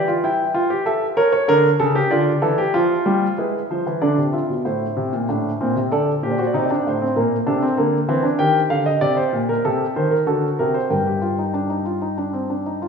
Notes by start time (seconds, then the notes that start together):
Already playing: E3 D5
0.08 F4
0.24 E4 G5
0.54 F4
0.70 G4
0.86 A4 E5
1.17 A#4 C#5
1.32 C#5
1.48 D3 A#4
1.80 C#3 A4
1.95 G4
2.11 D3 F4 D5
2.42 E3 A4
2.58 G4
2.74 F3 F4
3.06 G3
3.38 G#3 E4 B4
3.71 F3 C5
3.87 E3
4.02 D3 D4 D5
4.18 C3
4.33 F4 E5
4.49 B2
4.65 A2 E4 C5
4.97 C3
5.13 A#2
5.29 A2 D4
5.61 A#2 C4
5.76 C3
5.92 D3 A4 D5
6.23 A#2 G4 C5
6.31 D5
6.39 F#4 C5
6.47 D5
6.54 C3 D#4 C5
6.64 D5
6.71 D4 C5
6.79 D5
6.87 A2 C5
7.02 C4
7.16 A#2 A#3 A#4
7.47 C3 D4 A4
7.62 C4
7.77 D3 A#3
8.09 E3 C4
8.23 D4
8.39 D#3 G4 G5
8.70 D3 F5
8.86 D#5
9.01 C3 D5
9.17 C5
9.33 A#2
9.49 A#4
9.65 C3 A4
9.96 D#3 C5
10.11 A#4
10.27 D3 F#4 A4
10.59 C3 A#4
10.74 C5
10.90 G2 A#4 G5
11.06 G4
11.22 F4
11.39 D#4
11.54 D4
11.70 D#4
11.86 F4
12.02 D#4
12.18 D4
12.33 C4
12.50 D4
12.66 D#4
12.82 F4